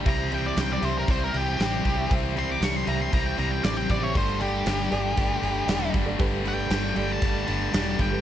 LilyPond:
<<
  \new Staff \with { instrumentName = "Lead electric guitar" } { \time 4/4 \key c \lydian \tempo 4 = 117 bes''8 g''16 d''16 g''16 d''16 c''16 bes'16 c''16 bes'16 g'8 g'4 | r8 c'''16 d'''16 cis'''16 c'''16 bes''16 c'''16 bes''16 g''16 bes''16 g''16 d''16 g''16 d''16 cis''16 | c''8 g'2. r8 | r8 g''4 g''16 a''4.~ a''16 g''8 | }
  \new Staff \with { instrumentName = "Reed electric piano" } { \time 4/4 \key c \lydian <g' c'' e''>4~ <g' c'' e''>16 r16 <g' c'' e''>4. r8. <g' c'' e''>16 | <g' c'' e''>4~ <g' c'' e''>16 r16 <g' c'' e''>4. r8. <g' c'' e''>16 | <g' a' d''>4~ <g' a' d''>16 r16 <g' a' d''>4. r8. <g' a' d''>16 | <g' a' b'>4~ <g' a' b'>16 r16 <g' a' d''>4. r8. <g' a' b'>16 | }
  \new Staff \with { instrumentName = "Overdriven electric guitar" } { \time 4/4 \key c \lydian <c e g e' g'>8 <c e g e' g'>8 <c e g e' g'>8 <c e g e' g'>8 <c e g e' g'>8 <c e g e' g'>8 <c e g e' g'>8 <c e g e' g'>8 | <c e g e' g'>8 <c e g e' g'>8 <c e g e' g'>8 <c e g e' g'>8 <c e g e' g'>8 <c e g e' g'>8 <c e g e' g'>8 <c e g e' g'>8 | <g a d' g'>8 <g a d' g'>8 <g a d' g'>8 <g a d' g'>8 <g a d' g'>8 <g a d' g'>8 <g a d' g'>8 <g a d' g'>8 | <g a d' g'>8 <g a d' g'>8 <g a d' g'>8 <g a d' g'>8 <g a d' g'>8 <g a d' g'>8 <g a d' g'>8 <g a d' g'>8 | }
  \new Staff \with { instrumentName = "Overdriven electric guitar" } { \clef bass \time 4/4 \key c \lydian <c g c'>8 <c g c'>8 <c g c'>8 <c g c'>8 <c g c'>8 <c g c'>8 <c g c'>8 <c g c'>8 | <c g c'>8 <c g c'>8 <c g c'>8 <c g c'>8 <c g c'>8 <c g c'>8 <c g c'>8 <c g c'>8 | <g, d g>8 <g, d g>8 <g, d g>8 <g, d g>8 <g, d g>8 <g, d g>8 <g, d g>8 <g, d g>8 | <g, d g>8 <g, d g>8 <g, d g>8 <g, d g>8 <g, d g>8 <g, d g>8 <g, d g>8 <g, d g>8 | }
  \new Staff \with { instrumentName = "Fingered electric bass" } { \clef bass \time 4/4 \key c \lydian c,4 c,8 c,8 c,8 c,8 a,,8 c,8 | c,4 c,8 c,8 c,8 c,8 a,,8 a,,8 | g,,4 g,,8 g,,8 g,,8 g,,8 e,,8 g,,8 | g,,4 g,,8 g,,8 g,,8 g,,8 e,,8 g,,8 | }
  \new DrumStaff \with { instrumentName = "Drums" } \drummode { \time 4/4 <hho bd>8 hho8 <hho sn>8 hho8 <hho bd>8 hho8 <hho sn>8 <hho bd>8 | <hho bd>8 hho8 <hho sn>8 hho8 <hho bd>8 hho8 <hho sn>8 <hho bd>8 | <hho bd>8 hho8 <hho sn>8 hho8 <hho bd>8 hho8 <hho sn>8 <hho bd>8 | <hho bd>8 hho8 <hho sn>8 hho8 <hho bd>8 hho8 <hho sn>8 <hho bd>8 | }
>>